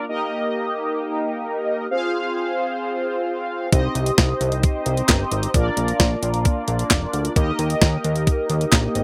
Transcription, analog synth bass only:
0, 0, Header, 1, 2, 480
1, 0, Start_track
1, 0, Tempo, 454545
1, 94, Time_signature, 4, 2, 24, 8
1, 9541, End_track
2, 0, Start_track
2, 0, Title_t, "Analog synth bass"
2, 0, Program_c, 0, 38
2, 3934, Note_on_c, 0, 36, 107
2, 4102, Note_off_c, 0, 36, 0
2, 4173, Note_on_c, 0, 36, 103
2, 4341, Note_off_c, 0, 36, 0
2, 4415, Note_on_c, 0, 36, 112
2, 4582, Note_off_c, 0, 36, 0
2, 4655, Note_on_c, 0, 36, 106
2, 4907, Note_off_c, 0, 36, 0
2, 5134, Note_on_c, 0, 36, 96
2, 5302, Note_off_c, 0, 36, 0
2, 5373, Note_on_c, 0, 31, 107
2, 5541, Note_off_c, 0, 31, 0
2, 5615, Note_on_c, 0, 32, 99
2, 5782, Note_off_c, 0, 32, 0
2, 5854, Note_on_c, 0, 34, 105
2, 6022, Note_off_c, 0, 34, 0
2, 6094, Note_on_c, 0, 34, 104
2, 6262, Note_off_c, 0, 34, 0
2, 6335, Note_on_c, 0, 34, 104
2, 6502, Note_off_c, 0, 34, 0
2, 6574, Note_on_c, 0, 34, 102
2, 6826, Note_off_c, 0, 34, 0
2, 7054, Note_on_c, 0, 34, 100
2, 7222, Note_off_c, 0, 34, 0
2, 7293, Note_on_c, 0, 29, 89
2, 7461, Note_off_c, 0, 29, 0
2, 7534, Note_on_c, 0, 38, 89
2, 7702, Note_off_c, 0, 38, 0
2, 7774, Note_on_c, 0, 39, 116
2, 7942, Note_off_c, 0, 39, 0
2, 8016, Note_on_c, 0, 39, 98
2, 8183, Note_off_c, 0, 39, 0
2, 8253, Note_on_c, 0, 39, 109
2, 8422, Note_off_c, 0, 39, 0
2, 8496, Note_on_c, 0, 39, 105
2, 8747, Note_off_c, 0, 39, 0
2, 8975, Note_on_c, 0, 39, 101
2, 9142, Note_off_c, 0, 39, 0
2, 9213, Note_on_c, 0, 34, 102
2, 9381, Note_off_c, 0, 34, 0
2, 9455, Note_on_c, 0, 32, 111
2, 9541, Note_off_c, 0, 32, 0
2, 9541, End_track
0, 0, End_of_file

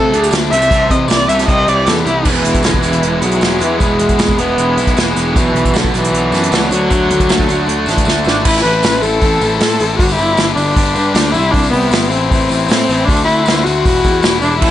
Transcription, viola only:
0, 0, Header, 1, 2, 480
1, 0, Start_track
1, 0, Tempo, 386100
1, 886, Time_signature, 4, 2, 24, 8
1, 18285, End_track
2, 0, Start_track
2, 0, Title_t, "Viola"
2, 0, Program_c, 0, 41
2, 0, Note_on_c, 0, 69, 96
2, 378, Note_off_c, 0, 69, 0
2, 640, Note_on_c, 0, 76, 109
2, 1124, Note_on_c, 0, 75, 92
2, 1143, Note_off_c, 0, 76, 0
2, 1359, Note_off_c, 0, 75, 0
2, 1376, Note_on_c, 0, 74, 96
2, 1602, Note_on_c, 0, 76, 86
2, 1621, Note_off_c, 0, 74, 0
2, 1838, Note_off_c, 0, 76, 0
2, 1849, Note_on_c, 0, 75, 99
2, 2093, Note_on_c, 0, 74, 94
2, 2112, Note_off_c, 0, 75, 0
2, 2328, Note_on_c, 0, 69, 92
2, 2347, Note_off_c, 0, 74, 0
2, 2555, Note_off_c, 0, 69, 0
2, 2563, Note_on_c, 0, 64, 99
2, 2800, Note_off_c, 0, 64, 0
2, 2812, Note_on_c, 0, 52, 86
2, 3286, Note_on_c, 0, 50, 83
2, 3304, Note_off_c, 0, 52, 0
2, 3520, Note_off_c, 0, 50, 0
2, 3527, Note_on_c, 0, 52, 86
2, 3978, Note_off_c, 0, 52, 0
2, 4028, Note_on_c, 0, 54, 94
2, 4521, Note_on_c, 0, 52, 89
2, 4539, Note_off_c, 0, 54, 0
2, 4733, Note_off_c, 0, 52, 0
2, 4741, Note_on_c, 0, 56, 97
2, 5456, Note_on_c, 0, 59, 97
2, 5474, Note_off_c, 0, 56, 0
2, 6181, Note_off_c, 0, 59, 0
2, 6604, Note_on_c, 0, 50, 66
2, 6659, Note_on_c, 0, 52, 96
2, 6677, Note_off_c, 0, 50, 0
2, 7172, Note_on_c, 0, 50, 89
2, 7190, Note_off_c, 0, 52, 0
2, 7400, Note_off_c, 0, 50, 0
2, 7423, Note_on_c, 0, 52, 96
2, 8317, Note_off_c, 0, 52, 0
2, 8352, Note_on_c, 0, 54, 118
2, 9982, Note_off_c, 0, 54, 0
2, 10259, Note_on_c, 0, 62, 84
2, 10487, Note_off_c, 0, 62, 0
2, 10507, Note_on_c, 0, 64, 89
2, 10710, Note_off_c, 0, 64, 0
2, 10718, Note_on_c, 0, 71, 93
2, 11210, Note_on_c, 0, 69, 94
2, 11229, Note_off_c, 0, 71, 0
2, 11907, Note_off_c, 0, 69, 0
2, 11915, Note_on_c, 0, 69, 96
2, 12376, Note_off_c, 0, 69, 0
2, 12423, Note_on_c, 0, 66, 92
2, 12613, Note_off_c, 0, 66, 0
2, 12620, Note_on_c, 0, 64, 95
2, 13088, Note_off_c, 0, 64, 0
2, 13114, Note_on_c, 0, 62, 89
2, 14065, Note_on_c, 0, 64, 100
2, 14084, Note_off_c, 0, 62, 0
2, 14315, Note_on_c, 0, 62, 92
2, 14333, Note_off_c, 0, 64, 0
2, 14541, Note_off_c, 0, 62, 0
2, 14548, Note_on_c, 0, 59, 87
2, 15024, Note_on_c, 0, 60, 87
2, 15043, Note_off_c, 0, 59, 0
2, 15744, Note_off_c, 0, 60, 0
2, 15751, Note_on_c, 0, 60, 93
2, 16224, Note_on_c, 0, 62, 95
2, 16243, Note_off_c, 0, 60, 0
2, 16459, Note_off_c, 0, 62, 0
2, 16467, Note_on_c, 0, 64, 90
2, 16943, Note_on_c, 0, 66, 103
2, 16962, Note_off_c, 0, 64, 0
2, 17915, Note_off_c, 0, 66, 0
2, 17923, Note_on_c, 0, 62, 90
2, 18141, Note_off_c, 0, 62, 0
2, 18149, Note_on_c, 0, 64, 96
2, 18285, Note_off_c, 0, 64, 0
2, 18285, End_track
0, 0, End_of_file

